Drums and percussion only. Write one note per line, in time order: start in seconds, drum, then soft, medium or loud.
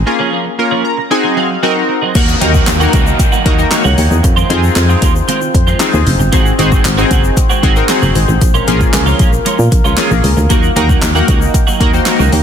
2.15 kick loud
2.15 closed hi-hat medium
2.15 crash loud
2.15 shaker medium
2.28 shaker soft
2.41 closed hi-hat medium
2.41 shaker soft
2.54 kick medium
2.54 shaker medium
2.67 snare loud
2.67 clap loud
2.67 closed hi-hat medium
2.67 shaker medium
2.81 shaker soft
2.93 kick medium
2.93 closed hi-hat medium
2.93 shaker medium
3.07 shaker medium
3.19 kick loud
3.19 closed hi-hat loud
3.19 shaker medium
3.33 shaker medium
3.46 kick medium
3.46 closed hi-hat medium
3.59 shaker soft
3.71 snare medium
3.71 clap loud
3.71 closed hi-hat loud
3.71 shaker medium
3.85 shaker medium
3.98 open hi-hat medium
3.98 shaker soft
4.11 shaker medium
4.24 kick loud
4.24 closed hi-hat medium
4.24 shaker medium
4.37 shaker soft
4.50 closed hi-hat medium
4.50 shaker soft
4.63 shaker medium
4.76 snare loud
4.76 clap loud
4.76 closed hi-hat medium
4.76 shaker medium
4.90 shaker soft
5.02 kick medium
5.02 closed hi-hat medium
5.02 shaker medium
5.16 shaker medium
5.28 closed hi-hat loud
5.28 shaker medium
5.42 shaker medium
5.55 kick medium
5.55 closed hi-hat medium
5.68 shaker soft
5.80 snare loud
5.80 clap loud
5.80 closed hi-hat loud
5.80 shaker medium
5.94 shaker medium
6.07 open hi-hat medium
6.07 shaker soft
6.20 shaker medium
6.33 kick loud
6.33 closed hi-hat loud
6.33 shaker medium
6.46 shaker soft
6.59 closed hi-hat medium
6.59 shaker soft
6.72 kick medium
6.72 shaker medium
6.85 snare loud
6.85 clap loud
6.85 closed hi-hat medium
6.85 shaker medium
6.98 shaker medium
7.11 kick medium
7.11 closed hi-hat medium
7.11 shaker medium
7.24 shaker medium
7.37 kick loud
7.37 closed hi-hat loud
7.37 shaker medium
7.50 shaker medium
7.63 kick medium
7.63 closed hi-hat medium
7.76 shaker soft
7.89 snare loud
7.89 clap loud
7.89 closed hi-hat loud
7.89 shaker medium
8.02 shaker medium
8.15 open hi-hat medium
8.15 shaker medium
8.29 shaker medium
8.41 kick loud
8.41 closed hi-hat medium
8.41 shaker medium
8.55 shaker soft
8.68 closed hi-hat medium
8.68 shaker soft
8.80 kick medium
8.80 shaker medium
8.93 snare loud
8.93 clap loud
8.93 closed hi-hat medium
8.93 shaker medium
9.07 shaker soft
9.19 kick medium
9.19 closed hi-hat medium
9.19 shaker medium
9.33 shaker medium
9.46 closed hi-hat loud
9.46 shaker medium
9.59 shaker medium
9.72 kick loud
9.72 closed hi-hat medium
9.72 shaker soft
9.85 shaker soft
9.97 snare loud
9.97 clap loud
9.97 closed hi-hat loud
9.97 shaker medium
10.11 shaker medium
10.24 open hi-hat medium
10.24 shaker medium
10.37 shaker medium
10.50 kick loud
10.50 closed hi-hat medium
10.50 shaker medium
10.63 shaker soft
10.76 closed hi-hat medium
10.76 shaker medium
10.89 kick medium
10.89 shaker medium
11.02 snare loud
11.02 clap loud
11.02 closed hi-hat medium
11.02 shaker medium
11.15 shaker medium
11.28 kick medium
11.28 closed hi-hat medium
11.28 shaker medium
11.42 shaker medium
11.54 kick loud
11.54 closed hi-hat loud
11.54 shaker medium
11.68 shaker medium
11.81 kick loud
11.81 closed hi-hat medium
11.94 shaker soft
12.06 snare loud
12.06 clap loud
12.06 closed hi-hat loud
12.06 shaker medium
12.20 shaker medium
12.32 open hi-hat medium
12.32 shaker medium